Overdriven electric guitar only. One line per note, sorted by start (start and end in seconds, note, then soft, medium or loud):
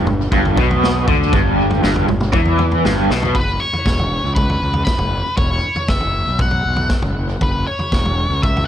0.07 0.27 G2 medium
0.33 0.57 G2 loud
0.56 1.06 B2 loud
1.08 1.32 D3 loud
1.34 1.82 G2 loud
1.83 2.07 G2 medium
2.08 2.29 G2 medium
2.33 2.84 E3 loud
2.85 3.09 G2 medium
3.11 3.35 B2 loud